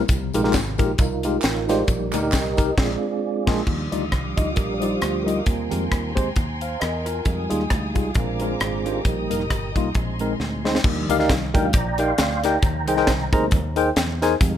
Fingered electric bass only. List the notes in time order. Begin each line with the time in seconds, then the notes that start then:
0.09 C2
0.35 A#1
0.54 G#1
0.80 A#1
0.99 C2
1.44 A1
1.88 A#1
2.14 D2
2.33 C2
2.78 A#1
3.47 A#1
3.67 D#2
3.92 D2
4.12 C2
4.38 D2
4.57 A#1
5.02 D2
5.47 D#2
5.72 F2
5.92 D#2
6.37 D#2
6.82 E2
7.26 F2
7.52 D#2
7.71 D2
7.96 C2
8.15 A#1
8.61 G#1
9.05 A#1
9.31 F1
9.51 G1
9.76 C2
9.95 A#1
10.40 D2
10.84 D#2
11.09 D2
11.30 C2
11.55 D2
11.74 A#1
12.19 D2
12.63 D#2
12.87 C2
13.08 C2
13.33 D2
13.52 D#2
13.96 E2
14.41 F2